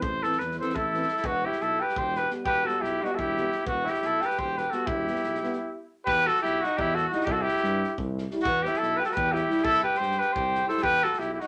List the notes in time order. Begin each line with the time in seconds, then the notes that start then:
0.02 A1 C5, kick
0.22 E3 C4 A4, snare
0.32 snare
0.39 E2 B4, snare
0.51 snare
0.59 E3 C4 A4 C5, snare
0.70 snare
0.75 A1 E4 A4, kick
0.93 E3 C4, snare
1.02 snare
1.08 snare
1.17 snare
1.24 E1 B3 F#4, kick
1.45 E4 G4
1.52 snare
1.59 B1 E4 A4, snare
1.80 G4 B4
1.89 snare
1.96 E1 G4 C5, kick
2.15 G4 B4, snare
2.30 G3 B3, snare
2.45 E1 G4 B4, kick
2.64 G3 B3 F#4 A4
2.68 snare
2.80 B1 E4 G4
2.84 snare
3.02 G3 B3 D#4 F#4, snare
3.10 F#4
3.15 E1 E4 A4, kick
3.19 G4
3.37 G3 B3, snare
3.52 snare
3.66 E1 B3 F#4, kick
3.85 E4, snare
3.90 G4
3.94 snare
4.02 B1 E4, snare
4.07 A4
4.21 G4, snare
4.26 B4
4.30 snare
4.39 E1 G4 C5, kick
4.57 G4 B4, snare
4.70 G3 B3 F#4 A4, snare
4.87 E1 E4 G4, kick
5.07 G3 B3, snare
5.16 snare
5.24 B1, snare
5.35 snare
5.43 G3 B3, snare
5.53 snare
6.05 E2 G4 B4, kick
6.26 F#4 A4, snare
6.36 snare
6.42 B1 E4 G4, snare
6.61 D#4 F#4, snare
6.77 E2 E4 G4, kick
6.95 F#4 A4, snare
7.08 G3 E4 F#4
7.12 D#4, snare
7.21 G4, snare
7.26 C2 E4, kick
7.32 F#4 A4
7.41 E4 G4
7.48 snare
7.56 snare
7.63 G2, snare
7.84 snare
7.98 C2, kick
8.18 snare
8.31 G3 E4, snare
8.39 F#4, snare
8.45 E2 B3, kick
8.62 E4 G4, snare
8.74 snare
8.78 B1 E4 A4
8.83 snare
8.97 G4 B4
9.04 A4, snare
9.08 F#4, snare
9.13 E2 G4 B4
9.17 kick
9.32 E4 G4, snare
9.49 G3 E4, snare
9.57 snare
9.63 C2 E4 A4, kick
9.78 snare
9.83 G4 B4
9.94 C5, snare
9.99 G2 G4, snare
10.11 snare
10.17 G4 B4
10.21 snare
10.33 C2 G4 C5, kick
10.55 snare
10.67 G3 E4 A4 C5, snare
10.78 snare
10.82 E2 G4 B4, kick
11.03 F#4 A4, snare
11.13 snare
11.18 B1 E4 G4, snare
11.33 E4 G4
11.40 D#4 F#4, snare